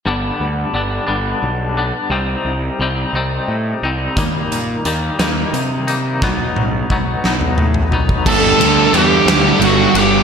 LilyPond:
<<
  \new Staff \with { instrumentName = "Lead electric guitar" } { \time 6/8 \key g \major \tempo 4. = 58 r2. | r2. | r2. | r2. |
<a' a''>4 <g' g''>4 <fis' fis''>8 <g' g''>8 | }
  \new Staff \with { instrumentName = "Clean electric guitar" } { \time 6/8 \key g \major <g, d g b d'>4 <d g b d'>8 <g, d g b d'>4 <g b d'>8 | <c g c' ees'>4 <c g c' ees'>8 <c g c' ees'>4 <g c' ees'>8 | <ees g bes ees'>4 <ees g bes ees'>8 <ees g bes ees'>4 <g bes ees'>8 | <b, fis b dis'>4 <b, fis b dis'>8 <b, fis b dis'>4 <fis b dis'>8 |
r2. | }
  \new Staff \with { instrumentName = "Distorted electric guitar" } { \clef bass \time 6/8 \key g \major r2. | r2. | r2. | r2. |
<g, d g>4. <g, d g>4. | }
  \new Staff \with { instrumentName = "Distorted electric guitar" } { \clef bass \time 6/8 \key g \major r2. | r2. | r2. | r2. |
<g, d g>8 <g, d g>8 <g, d g>8 <g, d g>8 <g, d g>4 | }
  \new Staff \with { instrumentName = "Picked electric bass" } { \clef bass \time 6/8 \key g \major g,,8 d,8 g,,8 g,,8 b,,4 | c,8 c,8 c,8 c,8 a,8 c,8 | ees,8 bes,8 ees,8 ees,8 c4 | b,,8 b,,8 b,,8 b,,8 a,8 b,,8 |
g,,8 d,8 e,8 d,8 g,,8 g,,8 | }
  \new DrumStaff \with { instrumentName = "Drums" } \drummode { \time 6/8 r4. r4. | r4. r4. | <hh bd>8 hh8 hh8 <hh sn>8 hh8 hh8 | <bd sn>8 tommh8 bd8 sn16 toml16 toml16 tomfh16 tomfh16 bd16 |
<cymc bd>8 cymr8 cymr8 <cymr sn>8 cymr8 cymr8 | }
>>